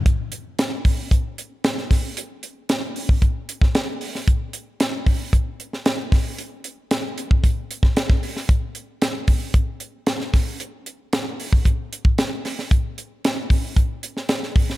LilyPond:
\new DrumStaff \with { instrumentName = "Drums" } \drummode { \time 4/4 \tempo 4 = 114 <hh bd>8 hh8 <hh sn>8 <hho bd>8 <hh bd>8 hh8 <hh sn>16 sn16 <hho bd sn>8 | hh8 hh8 <hh sn>8 hho16 bd16 <hh bd>8 hh16 <bd sn>16 <hh sn>8 hho16 sn16 | <hh bd>8 hh8 <hh sn>8 <hho bd>8 <hh bd>8 hh16 sn16 <hh sn>8 <hho bd sn>8 | hh8 hh8 <hh sn>8 hh16 bd16 <hh bd>8 hh16 <bd sn>16 <hh sn>16 <bd sn>16 hho16 sn16 |
<hh bd>8 hh8 <hh sn>8 <hho bd>8 <hh bd>8 hh8 <hh sn>16 sn16 <hho bd sn>8 | hh8 hh8 <hh sn>8 hho16 bd16 <hh bd>8 hh16 bd16 <hh sn>8 <hho sn>16 sn16 | <hh bd>8 hh8 <hh sn>8 <hho bd>8 <hh bd>8 hh16 sn16 <hh sn>16 sn16 <hho bd>16 sn16 | }